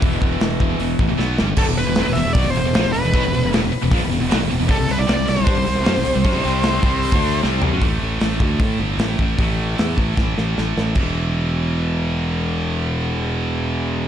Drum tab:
CC |----------------|x---------------|----------------|----------------|
HH |o---o---o-------|--o-o-o-o-o-o-o-|o-o-o-o-o-o-o-o-|o-o-o-o-o-o-o-o-|
SD |----o-------o-o-|----o-o-----o---|----o-------o---|----o-o-----o---|
FT |----------------|----------------|----------------|----------------|
BD |o-o---o---o-----|o-------o-------|o-------o-------|o-------o-------|

CC |----------------|----------------|----------------|x---------------|
HH |o-o-o-o-o-o-----|o---o---o---o---|o---o-----------|----------------|
SD |----o-------o---|----o-------o---|----o---o-o-o-o-|----------------|
FT |--------------o-|----------------|----------------|----------------|
BD |o-----o--o------|o-----o-o-----o-|o-----o-o-------|o---------------|

CC |----------------|
HH |----------------|
SD |----------------|
FT |----------------|
BD |----------------|